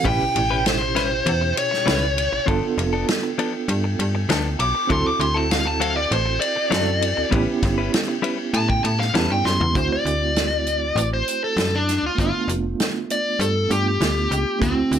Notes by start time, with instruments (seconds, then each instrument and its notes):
0.03 fm bass A1, reed electric piano B2 C#4 E4 G4, clean electric guitar G3 C#4 E4 B4, lead electric guitar G5, kick, ride bell
0.22 fm bass A1
0.35 fm bass A1, muted clean electric guitar stroke, ride bell
0.51 clean electric guitar C#4 E4 B4
0.66 lead electric guitar C5, snare, ride bell
0.81 muted clean electric guitar stroke
0.95 clean electric guitar G3 C#4 E4 B4, snare, ride bell
1.12 muted clean electric guitar stroke
1.26 fm bass E2, ride bell
1.41 muted clean electric guitar stroke
1.57 lead electric guitar C#5, ride bell
1.71 muted clean electric guitar stroke, snare
1.86 fm bass C#2, clean electric guitar G3 C#4 E4 B4, snare, ride bell
2.17 muted clean electric guitar stroke, ride bell
2.33 fm bass A1, muted clean electric guitar stroke
2.46 fm bass G1, clean electric guitar F3 B3 D4 A4, reed electric piano B3 D4 F4 A4, kick, ride bell
2.78 fm bass F1, muted clean electric guitar stroke, ride bell
2.93 clean electric guitar B3 D4 A4
3.08 muted clean electric guitar stroke, snare, ride bell
3.23 muted clean electric guitar stroke
3.38 clean electric guitar F3 B3 D4 A4, ride bell
3.54 muted clean electric guitar stroke
3.68 fm bass G2, ride bell
3.84 muted clean electric guitar stroke
3.99 fm bass G2, ride bell
4.15 muted clean electric guitar stroke
4.29 fm bass D2, clean electric guitar F3 B3 D4 A4, snare, ride bell
4.59 fm bass B1, lead electric guitar D6, muted clean electric guitar stroke, ride bell
4.75 muted clean electric guitar stroke
4.87 fm bass D2, clean electric guitar F#3 C4 E4 A4, reed electric piano C4 E4 F#4 A4, kick, ride bell
4.92 lead electric guitar C6
5.06 fm bass D2, lead electric guitar D6
5.19 fm bass D2, lead electric guitar C6, muted clean electric guitar stroke, ride bell
5.34 clean electric guitar C4 E4 A4, lead electric guitar A5
5.49 lead electric guitar F5, muted clean electric guitar stroke, snare, ride bell
5.66 lead electric guitar A5, muted clean electric guitar stroke
5.80 clean electric guitar F#3 C4 E4 A4, lead electric guitar F5, ride bell
5.96 lead electric guitar D5, muted clean electric guitar stroke
6.11 fm bass A1, lead electric guitar C5, ride bell
6.26 muted clean electric guitar stroke
6.40 lead electric guitar D5, ride bell
6.56 muted clean electric guitar stroke
6.70 fm bass F#2, clean electric guitar F#3 C4 E4 A4, reed electric piano C4 E4 F#4 A4, snare, ride bell
7.01 muted clean electric guitar stroke, ride bell
7.17 fm bass D2, muted clean electric guitar stroke
7.29 fm bass A1, clean electric guitar G3 C#4 E4 B4, reed electric piano B3 C#4 E4 G4, kick, ride bell
7.62 fm bass G1, muted clean electric guitar stroke, kick, snare, ride bell
7.78 clean electric guitar C#4 E4 B4
7.92 muted clean electric guitar stroke, snare, ride bell
8.08 muted clean electric guitar stroke
8.22 clean electric guitar G3 C#4 E4 B4, ride bell
8.39 muted clean electric guitar stroke
8.54 fm bass A2, lead electric guitar A5, ride bell
8.69 lead electric guitar G5, muted clean electric guitar stroke, kick
8.84 fm bass A2, lead electric guitar A5, ride bell
8.99 lead electric guitar F5, muted clean electric guitar stroke, snare
9.13 fm bass E2, clean electric guitar G3 C#4 E4 B4, reed electric piano B3 C#4 E4 G4, lead electric guitar A5, snare, ride bell
9.30 fm bass G2, lead electric guitar G5
9.44 fm bass F#2, lead electric guitar C6, muted clean electric guitar stroke, snare
9.60 fm bass E2, muted clean electric guitar stroke, floor tom
9.73 fm bass D2, reed electric piano A3 C4 E4 F#4, lead electric guitar C5, kick, closed hi-hat
9.91 fm bass D2, lead electric guitar D5
10.05 fm bass D2, closed hi-hat
10.36 snare, closed hi-hat
10.66 closed hi-hat
10.96 fm bass A1, closed hi-hat
11.13 lead electric guitar C5
11.28 closed hi-hat
11.44 lead electric guitar A4
11.57 fm bass F#2, snare, closed hi-hat
11.75 lead electric guitar D4
11.89 snare, closed hi-hat
12.03 fm bass D2, lead electric guitar F4
12.15 fm bass G1, reed electric piano A3 B3 D4 F4, kick, closed hi-hat
12.21 lead electric guitar F4
12.48 fm bass F1, closed hi-hat
12.80 snare, closed hi-hat
13.10 lead electric guitar D5, closed hi-hat
13.39 fm bass G2, lead electric guitar A4, closed hi-hat
13.69 fm bass G2, reed electric piano A3 B3 D4 F4, lead electric guitar G4, closed hi-hat
14.01 fm bass D2, snare, closed hi-hat
14.31 fm bass C#2, closed hi-hat
14.59 fm bass D2, reed electric piano A3 C4 E4 F#4, lead electric guitar C4, kick, closed hi-hat
14.77 fm bass D2
14.91 fm bass D2, closed hi-hat